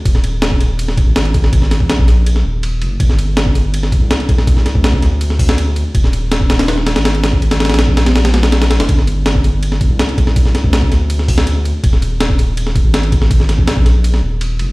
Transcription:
0.05 1.05 D#1 loud
0.05 kick loud
0.05 ride medium
0.15 snare soft
0.24 ride medium
0.42 snare loud
0.42 ride medium
0.52 kick medium
0.61 ride medium
0.79 ride medium
0.88 snare soft
0.97 kick loud
0.97 ride medium
1.07 1.82 G#1 medium
1.16 snare loud
1.16 ride medium
1.25 ride soft
1.34 kick medium
1.34 ride medium
1.44 snare medium
1.53 kick loud
1.53 ride medium
1.62 snare soft
1.71 snare medium
1.71 ride medium
1.80 2.44 A#1 loud
1.80 kick loud
1.90 snare loud
1.90 ride medium
1.99 kick medium
2.08 snare soft
2.08 ride medium
2.26 ride medium
2.36 snare soft
2.45 2.83 D#1 loud
2.63 ride medium
2.81 2.98 F#1 loud
2.81 ride medium
3.00 4.00 G1 medium
3.00 kick loud
3.00 ride medium
3.10 snare soft
3.19 ride medium
3.37 snare loud
3.37 ride medium
3.46 kick loud
3.55 ride medium
3.74 ride medium
3.83 snare soft
3.92 kick medium
3.92 ride medium
4.01 4.77 C2 medium
4.11 snare loud
4.11 ride medium
4.20 ride soft
4.29 kick loud
4.29 ride medium
4.38 snare medium
4.47 kick loud
4.47 ride medium
4.57 snare soft
4.66 snare medium
4.66 ride medium
4.75 5.84 D2 loud
4.75 kick loud
4.84 snare loud
4.84 ride medium
4.93 kick loud
5.02 snare soft
5.02 ride medium
5.21 ride medium
5.30 snare soft
5.39 kick loud
5.39 open hi-hat medium
5.49 snare loud
5.58 ride medium
5.76 ride medium
5.95 6.94 D#1 loud
5.95 kick loud
5.95 ride medium
6.04 snare soft
6.13 ride medium
6.32 snare loud
6.32 ride medium
6.41 kick loud
6.50 snare loud
6.50 ride medium
6.59 snare loud
6.59 ride medium
6.68 snare loud
6.68 ride medium
6.78 snare soft
6.87 snare loud
6.87 ride medium
6.96 7.71 G#1 medium
6.96 snare loud
6.96 ride medium
7.05 snare loud
7.05 ride medium
7.15 ride soft
7.24 snare loud
7.24 ride medium
7.33 kick medium
7.42 ride medium
7.51 snare loud
7.51 ride medium
7.60 snare medium
7.60 ride medium
7.65 snare medium
7.65 ride medium
7.69 8.78 A#1 loud
7.69 snare medium
7.69 ride medium
7.74 snare medium
7.74 ride medium
7.79 snare loud
7.79 ride medium
7.88 kick medium
7.97 snare loud
7.97 ride medium
8.06 snare loud
8.06 ride medium
8.16 snare loud
8.16 ride medium
8.25 snare loud
8.25 ride medium
8.34 snare loud
8.34 ride medium
8.43 snare loud
8.43 ride medium
8.52 snare loud
8.52 ride medium
8.62 snare loud
8.62 ride medium
8.71 snare loud
8.71 ride medium
8.80 8.88 F#1 medium
8.80 snare loud
8.80 ride medium
8.89 9.89 G1 loud
8.89 kick loud
8.89 ride medium
8.98 snare soft
9.07 ride medium
9.26 snare loud
9.26 ride medium
9.35 kick loud
9.44 ride medium
9.63 ride medium
9.72 snare soft
9.81 kick medium
9.81 ride medium
9.90 10.66 C2 medium
9.99 snare loud
9.99 ride medium
10.09 ride soft
10.18 kick loud
10.18 ride medium
10.27 snare medium
10.36 kick loud
10.36 ride medium
10.46 snare soft
10.55 snare medium
10.55 ride medium
10.64 11.73 D2 loud
10.64 kick loud
10.73 snare loud
10.73 ride medium
10.82 kick loud
10.92 snare soft
10.92 ride medium
11.10 ride medium
11.19 snare soft
11.28 kick loud
11.28 open hi-hat medium
11.38 snare loud
11.47 ride medium
11.65 ride medium
11.84 12.83 D#1 loud
11.84 kick loud
11.84 ride medium
11.93 snare soft
12.02 ride medium
12.20 snare loud
12.20 ride medium
12.30 kick loud
12.39 ride medium
12.57 ride medium
12.67 snare soft
12.76 kick loud
12.76 ride medium
12.85 13.60 G#1 medium
12.94 snare loud
12.94 ride medium
13.03 ride soft
13.12 kick loud
13.12 ride medium
13.22 snare medium
13.31 kick loud
13.31 ride medium
13.40 snare soft
13.49 snare medium
13.49 ride medium
13.58 14.22 A#1 loud
13.58 kick loud
13.68 snare loud
13.68 ride medium
13.77 kick loud
13.86 snare soft
13.86 ride medium
14.04 ride medium
14.14 snare soft
14.23 14.61 D#1 medium
14.41 ride medium
14.59 14.72 F#1 loud
14.59 ride medium

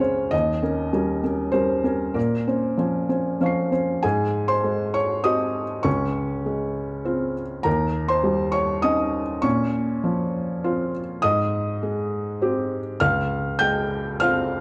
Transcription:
0.00 0.34 C#2 medium
0.00 0.35 G#3 soft
0.00 0.35 C#4 soft
0.00 0.35 C5 medium
0.00 0.35 C#5 medium
0.00 0.35 F5 medium
0.31 0.62 D#2 medium
0.31 1.53 D#5 medium
0.62 0.90 C#4 soft
0.62 0.90 A#4 soft
0.93 1.20 G3 soft
0.93 1.20 C#4 soft
0.93 1.20 A#4 soft
1.24 1.51 C#4 soft
1.24 1.51 A#4 soft
1.52 1.81 G3 soft
1.52 1.81 C#4 soft
1.52 1.82 A#4 soft
1.52 2.15 C5 medium
1.84 2.12 C#4 soft
1.84 2.13 A#4 soft
2.14 2.46 A#2 medium
2.14 3.71 A#4 medium
2.47 2.75 C#4 soft
2.47 2.75 C5 soft
2.77 3.06 F3 soft
2.77 3.06 C#4 soft
2.77 3.06 C5 soft
3.09 3.37 C#4 soft
3.09 3.37 C5 soft
3.40 3.69 F3 soft
3.40 3.69 C#4 soft
3.40 3.69 C5 soft
3.40 3.99 F5 soft
3.40 4.00 C#6 soft
3.46 4.02 C7 soft
3.72 4.00 C#4 soft
3.72 4.00 C5 soft
4.03 5.82 G#2 medium
4.03 4.46 G#4 medium
4.03 4.49 G#5 medium
4.48 4.91 C5 medium
4.48 4.94 C6 medium
4.64 5.61 G#3 soft
4.94 5.23 C#5 medium
4.94 5.25 C#6 medium
5.24 5.81 C4 soft
5.24 5.82 G4 soft
5.24 5.81 D#5 medium
5.24 5.85 D#6 medium
5.83 7.61 C#2 medium
5.83 7.31 C#4 medium
5.83 7.35 C#6 medium
6.46 7.42 G#3 soft
7.05 7.61 C4 soft
7.05 7.61 F4 soft
7.63 9.40 D#2 medium
7.63 8.07 A#4 medium
7.63 8.09 A#5 medium
8.08 8.51 C5 medium
8.08 8.54 C6 medium
8.23 9.19 G3 soft
8.52 8.81 C#5 medium
8.52 8.83 C#6 medium
8.82 9.40 C#4 soft
8.82 9.40 D#4 soft
8.82 9.39 D#5 medium
8.82 9.43 D#6 medium
9.42 11.18 A#2 medium
9.42 10.89 C#4 medium
9.42 10.92 C#6 medium
10.04 10.99 F3 medium
10.64 11.19 C4 soft
10.64 11.19 F4 medium
11.22 12.97 G#2 medium
11.22 12.97 D#5 medium
11.22 13.00 D#6 loud
11.83 12.77 G#3 medium
12.42 12.97 C4 medium
12.42 12.97 G4 medium
13.00 14.61 C#2 medium
13.00 13.57 F5 medium
13.00 13.60 F6 loud
13.59 14.57 G#3 medium
13.59 14.17 G5 medium
13.59 14.20 G6 loud
14.20 14.61 C4 medium
14.20 14.61 F4 medium
14.20 14.61 F5 medium
14.20 14.61 F6 loud

